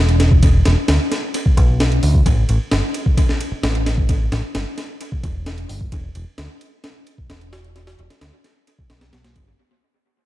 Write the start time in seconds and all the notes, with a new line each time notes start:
Already playing: E1
0.09 ride
0.20 snare, ride
0.31 kick
0.43 kick, ride
0.65 E1, snare, ride
0.77 muted picked electric bass stroke
0.88 D2, snare, ride
1.12 snare, ride
1.34 ride
1.46 kick
1.57 B1, kick, ride
1.80 snare, ride
1.92 ride
2.03 D2, open hi-hat
2.15 kick
2.26 A1, kick, ride
2.49 A1, ride
2.71 G1, snare, ride
2.94 ride
3.06 kick
3.17 kick, ride
3.29 snare
3.41 ride
3.52 muted picked electric bass stroke
3.63 A1, snare, ride
3.75 ride
3.86 snare, ride
3.98 kick
4.09 kick, ride
4.32 A1, snare, ride
4.44 muted picked electric bass stroke
4.55 G1, snare, ride
4.78 snare, ride
5.01 ride
5.12 kick
5.24 E1, kick, ride
5.46 snare, ride
5.58 ride
5.69 G1, open hi-hat
5.81 kick
5.92 E1, kick, ride
6.15 E1, ride
6.38 D2, snare, ride
6.61 ride
6.84 snare, ride
7.07 ride
7.18 muted picked electric bass stroke, kick
7.30 E1, snare, ride
7.41 ride
7.53 snare, ride
7.64 ride
7.76 snare, ride
7.87 snare, ride
7.99 E1, ride
8.10 snare, ride
8.21 D2, snare, ride
8.44 snare, ride
8.67 ride
8.79 kick
8.90 B1, snare, ride
9.01 snare, ride
9.13 B1, snare, ride
9.24 snare, ride
9.36 G1, kick, ride